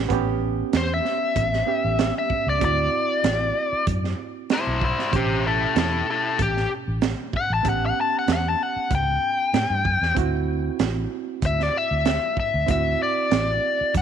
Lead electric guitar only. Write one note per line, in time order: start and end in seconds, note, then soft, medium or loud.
0.77 0.91 C5 medium
0.94 2.14 E5 medium
2.18 2.47 E5 medium
2.49 2.62 D5 medium
2.65 3.85 D5 medium
4.53 4.83 E4 medium
4.53 4.83 C5 medium
4.84 5.12 E4 medium
4.84 5.14 C5 medium
5.16 5.44 G4 medium
5.16 5.45 C5 medium
5.47 5.75 E4 medium
5.47 5.76 A4 medium
5.78 6.06 E4 medium
5.78 6.08 A4 medium
6.10 6.38 E4 medium
6.10 6.40 A4 medium
6.42 6.71 G4 medium
7.37 7.51 F#5 loud
7.54 7.66 A5 medium
7.69 7.83 F#5 medium
7.86 7.98 F#5 medium
8.01 8.15 A5 medium
8.19 8.30 F#5 medium
8.33 8.47 F#5 medium
8.49 8.63 A5 medium
8.63 8.91 F#5 medium
8.95 10.15 G5 loud
11.46 11.63 E5 medium
11.63 11.77 D5 medium
11.77 12.37 E5 medium
12.40 12.69 E5 medium
12.71 13.00 E5 medium
13.03 13.93 D5 medium
13.98 14.02 F#5 loud